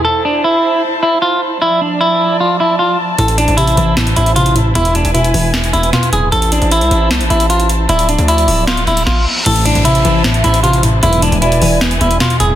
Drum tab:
CC |----------------|----------------|----------------|----------------|
HH |----------------|----------------|xxxxxxx-xxxxxxx-|xxxxxxo-xxxxxxx-|
SD |----------------|----------------|--------o-------|--------o---o---|
BD |----------------|----------------|----------------|----------------|

CC |----------------|----------------|x---------------|----------------|
HH |xxxxxxx-xxxxxxx-|xxxxxxo-xxxx----|xxxxxxx-xxxxxxx-|xxxxxxo-xxxxxxx-|
SD |--------o-------|--------o---o---|--------o-------|--------o---o---|
BD |----------------|------------o---|----------------|----------------|